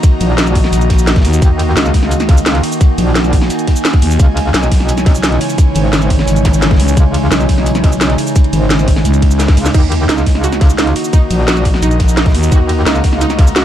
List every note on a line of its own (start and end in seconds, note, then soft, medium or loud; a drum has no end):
0.00 4.16 D#3 medium
0.00 4.16 A#3 medium
0.00 4.16 D#4 medium
0.00 4.16 F#4 medium
0.00 5.30 F#4 medium
0.00 4.97 D#5 loud
0.00 2.36 A#5 loud
0.00 kick loud
0.00 closed hi-hat loud
0.00 shaker medium
0.21 0.71 A#1 loud
0.21 closed hi-hat medium
0.21 ride medium
0.21 shaker soft
0.37 snare loud
0.37 closed hi-hat medium
0.37 shaker soft
0.47 snare soft
0.47 shaker soft
0.55 kick medium
0.55 closed hi-hat medium
0.55 open hi-hat medium
0.55 ride medium
0.64 snare medium
0.64 snare soft
0.73 1.23 A#1 loud
0.73 closed hi-hat loud
0.73 closed hi-hat medium
0.73 shaker soft
0.81 closed hi-hat soft
0.81 shaker soft
0.90 kick medium
0.90 snare soft
0.90 closed hi-hat medium
0.90 ride medium
0.99 shaker medium
1.07 snare loud
1.07 snare medium
1.07 closed hi-hat medium
1.07 shaker soft
1.16 kick loud
1.16 snare medium
1.16 closed hi-hat soft
1.16 closed hi-hat medium
1.21 snare loud
1.21 closed hi-hat medium
1.24 1.41 D#2 loud
1.24 closed hi-hat medium
1.24 open hi-hat medium
1.24 ride medium
1.24 shaker soft
1.33 shaker medium
1.42 1.75 D#2 loud
1.42 kick loud
1.42 closed hi-hat medium
1.42 shaker soft
1.59 closed hi-hat medium
1.59 ride medium
1.76 2.62 C#2 loud
1.76 snare loud
1.76 closed hi-hat medium
1.76 shaker soft
1.85 snare soft
1.85 shaker soft
1.94 kick medium
1.94 snare soft
1.94 closed hi-hat medium
1.94 open hi-hat medium
1.94 ride medium
2.03 snare soft
2.11 closed hi-hat medium
2.11 shaker soft
2.20 snare soft
2.20 closed hi-hat soft
2.20 shaker soft
2.26 10.56 G#5 loud
2.26 kick loud
2.26 snare soft
2.26 closed hi-hat medium
2.26 ride medium
2.37 shaker medium
2.46 snare loud
2.46 closed hi-hat medium
2.46 closed hi-hat loud
2.46 shaker soft
2.55 closed hi-hat soft
2.64 closed hi-hat medium
2.64 open hi-hat medium
2.64 ride medium
2.64 shaker soft
2.72 closed hi-hat soft
2.72 shaker medium
2.81 kick loud
2.81 closed hi-hat medium
2.81 shaker soft
2.98 3.49 A#1 loud
2.98 closed hi-hat medium
2.98 ride medium
2.98 shaker soft
3.15 snare loud
3.15 closed hi-hat medium
3.15 shaker medium
3.24 snare soft
3.24 shaker soft
3.33 kick medium
3.33 closed hi-hat medium
3.33 open hi-hat medium
3.33 ride medium
3.41 snare medium
3.41 snare soft
3.50 closed hi-hat medium
3.50 shaker soft
3.59 closed hi-hat soft
3.59 shaker soft
3.67 kick medium
3.67 snare soft
3.67 closed hi-hat medium
3.67 ride medium
3.76 shaker medium
3.85 snare loud
3.85 closed hi-hat medium
3.85 open hi-hat medium
3.85 shaker soft
3.94 kick loud
3.94 closed hi-hat soft
4.02 4.18 D#2 loud
4.02 closed hi-hat medium
4.02 open hi-hat medium
4.02 ride medium
4.02 shaker soft
4.11 shaker medium
4.19 4.53 C#2 loud
4.19 9.70 C#3 medium
4.19 9.75 E3 medium
4.19 9.70 G#3 medium
4.19 13.65 D#4 medium
4.19 9.70 E4 medium
4.19 kick loud
4.19 closed hi-hat medium
4.19 shaker soft
4.34 10.57 C#5 medium
4.34 closed hi-hat medium
4.34 ride medium
4.54 5.40 B1 medium
4.54 snare loud
4.54 closed hi-hat medium
4.54 closed hi-hat loud
4.54 shaker medium
4.63 snare soft
4.63 shaker soft
4.72 kick medium
4.72 snare soft
4.72 closed hi-hat medium
4.72 open hi-hat medium
4.72 ride medium
4.80 snare soft
4.88 closed hi-hat medium
4.88 shaker soft
4.98 snare soft
4.98 closed hi-hat soft
4.98 shaker soft
5.06 kick loud
5.06 snare soft
5.06 closed hi-hat medium
5.06 ride medium
5.15 shaker medium
5.23 snare loud
5.23 closed hi-hat medium
5.23 shaker medium
5.32 closed hi-hat soft
5.41 closed hi-hat medium
5.41 open hi-hat medium
5.41 ride medium
5.41 shaker soft
5.50 closed hi-hat soft
5.50 shaker medium
5.58 kick loud
5.58 closed hi-hat medium
5.58 shaker medium
5.75 6.26 G#1 loud
5.75 closed hi-hat medium
5.75 ride medium
5.75 shaker soft
5.93 snare loud
5.93 closed hi-hat medium
5.93 closed hi-hat loud
5.93 shaker medium
6.02 snare soft
6.02 shaker soft
6.10 kick medium
6.10 closed hi-hat medium
6.10 open hi-hat medium
6.10 ride medium
6.19 snare medium
6.19 snare soft
6.28 6.78 G#1 medium
6.28 closed hi-hat medium
6.28 shaker medium
6.36 closed hi-hat soft
6.36 shaker soft
6.45 kick medium
6.45 snare soft
6.45 closed hi-hat medium
6.45 ride medium
6.45 zap medium
6.54 shaker medium
6.62 snare loud
6.62 closed hi-hat medium
6.62 shaker medium
6.71 kick loud
6.71 snare medium
6.71 closed hi-hat soft
6.71 closed hi-hat medium
6.75 snare medium
6.75 closed hi-hat medium
6.80 6.96 C#2 loud
6.80 closed hi-hat medium
6.80 open hi-hat medium
6.80 ride medium
6.80 shaker soft
6.88 shaker medium
6.97 7.30 C#2 loud
6.97 kick loud
6.97 closed hi-hat medium
6.97 shaker medium
7.14 closed hi-hat medium
7.14 ride medium
7.31 8.17 B1 medium
7.31 snare loud
7.31 closed hi-hat loud
7.31 closed hi-hat medium
7.31 shaker medium
7.40 snare soft
7.40 shaker soft
7.49 kick medium
7.49 snare soft
7.49 closed hi-hat medium
7.49 open hi-hat medium
7.49 ride medium
7.58 snare soft
7.66 closed hi-hat medium
7.66 shaker medium
7.75 snare soft
7.75 closed hi-hat soft
7.75 shaker soft
7.84 kick loud
7.84 snare soft
7.84 closed hi-hat medium
7.84 ride medium
7.92 shaker medium
8.01 snare loud
8.01 closed hi-hat loud
8.01 closed hi-hat medium
8.01 shaker medium
8.09 closed hi-hat soft
8.18 closed hi-hat medium
8.18 open hi-hat medium
8.18 ride medium
8.18 shaker soft
8.27 closed hi-hat soft
8.27 shaker medium
8.36 kick loud
8.36 closed hi-hat loud
8.36 closed hi-hat medium
8.36 shaker medium
8.44 closed hi-hat soft
8.53 9.04 G#1 loud
8.53 closed hi-hat medium
8.53 ride medium
8.53 shaker soft
8.70 snare loud
8.70 closed hi-hat medium
8.70 closed hi-hat loud
8.70 shaker medium
8.79 snare soft
8.79 shaker soft
8.88 kick medium
8.88 closed hi-hat medium
8.88 open hi-hat medium
8.88 ride medium
8.96 snare medium
8.96 snare soft
9.05 9.56 C#2 loud
9.05 closed hi-hat medium
9.05 shaker medium
9.14 closed hi-hat soft
9.14 shaker soft
9.22 kick medium
9.22 closed hi-hat medium
9.22 ride medium
9.31 shaker medium
9.39 snare loud
9.39 snare medium
9.39 closed hi-hat loud
9.39 closed hi-hat medium
9.39 shaker medium
9.48 kick loud
9.48 snare loud
9.48 snare medium
9.48 closed hi-hat medium
9.48 closed hi-hat soft
9.57 9.73 C#2 loud
9.57 closed hi-hat medium
9.57 open hi-hat medium
9.57 ride medium
9.57 shaker soft
9.66 snare medium
9.66 shaker medium
9.74 10.08 D#2 loud
9.74 13.65 D#3 medium
9.74 13.65 A#3 medium
9.74 9.81 D#4 medium
9.74 13.65 F#4 medium
9.74 kick loud
9.74 closed hi-hat loud
9.74 closed hi-hat medium
9.74 crash medium
9.74 shaker medium
9.92 closed hi-hat medium
9.92 ride medium
10.01 13.65 D#5 medium
10.07 10.16 D#4 loud
10.07 13.65 A#5 medium
10.07 snare loud
10.07 closed hi-hat medium
10.07 closed hi-hat loud
10.07 shaker medium
10.18 snare soft
10.18 shaker soft
10.26 kick medium
10.26 snare soft
10.26 closed hi-hat medium
10.26 open hi-hat medium
10.26 ride medium
10.35 snare soft
10.44 10.60 F#4 loud
10.44 closed hi-hat medium
10.44 closed hi-hat loud
10.44 shaker medium
10.52 snare soft
10.52 closed hi-hat soft
10.52 shaker soft
10.61 kick loud
10.61 snare soft
10.61 closed hi-hat medium
10.61 ride medium
10.70 shaker medium
10.79 10.85 D#4 medium
10.79 snare loud
10.79 closed hi-hat loud
10.79 closed hi-hat medium
10.79 shaker medium
10.87 closed hi-hat soft
10.96 closed hi-hat medium
10.96 open hi-hat medium
10.96 ride medium
10.96 shaker soft
11.05 closed hi-hat soft
11.05 shaker medium
11.13 11.20 D#4 loud
11.13 kick loud
11.13 closed hi-hat loud
11.13 closed hi-hat medium
11.13 shaker soft
11.31 11.81 A#1 loud
11.31 closed hi-hat medium
11.31 ride medium
11.31 shaker soft
11.47 11.64 F#4 loud
11.47 snare loud
11.47 closed hi-hat medium
11.47 shaker medium
11.57 snare soft
11.57 shaker soft
11.65 kick medium
11.65 closed hi-hat medium
11.65 open hi-hat medium
11.65 ride medium
11.74 snare medium
11.74 snare soft
11.82 12.33 A#1 loud
11.82 11.89 D#4 medium
11.82 closed hi-hat loud
11.82 closed hi-hat medium
11.82 shaker medium
11.91 closed hi-hat soft
11.91 shaker soft
11.99 kick medium
11.99 snare soft
11.99 closed hi-hat medium
11.99 ride medium
12.09 shaker medium
12.17 12.24 D#4 loud
12.17 snare loud
12.17 closed hi-hat medium
12.17 closed hi-hat loud
12.17 shaker medium
12.26 kick loud
12.26 snare loud
12.26 closed hi-hat medium
12.26 closed hi-hat soft
12.29 snare medium
12.29 closed hi-hat medium
12.34 12.50 D#2 loud
12.34 closed hi-hat medium
12.34 open hi-hat medium
12.34 ride medium
12.34 shaker soft
12.43 shaker medium
12.51 12.85 D#2 loud
12.51 12.68 F#4 loud
12.51 kick loud
12.51 closed hi-hat medium
12.51 shaker soft
12.69 closed hi-hat medium
12.69 ride medium
12.86 13.65 C#2 loud
12.86 12.93 D#4 medium
12.86 snare loud
12.86 closed hi-hat medium
12.86 shaker soft
12.95 snare soft
12.95 shaker soft
13.04 kick medium
13.04 snare medium
13.04 closed hi-hat medium
13.04 open hi-hat medium
13.04 ride medium
13.13 snare soft
13.21 13.28 D#4 loud
13.21 closed hi-hat medium
13.21 shaker soft
13.30 snare soft
13.30 closed hi-hat soft
13.30 shaker soft
13.39 kick loud
13.39 snare soft
13.39 closed hi-hat medium
13.39 ride medium
13.47 shaker medium
13.56 13.65 F#4 loud
13.56 snare loud
13.56 closed hi-hat medium
13.56 shaker soft